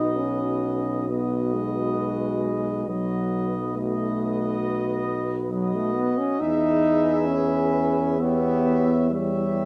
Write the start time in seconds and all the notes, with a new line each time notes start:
Already playing: B1 D#4 F#4 B4 D#5
0.16 C#4
1.08 B3 F#4 B4 D#5
1.54 G#3
2.88 B1 F#3 F#4 B4 D#5
3.74 A3 F#4 B4 D#5
5.51 F#3 F#4 B4 D#5
5.75 A3
5.95 B3
6.18 C#4
6.39 E2 D#4 G#4 B4 E5
7.27 C#4
8.19 B3 G4 C#5 E5
9.11 G3 G4 C#5 E5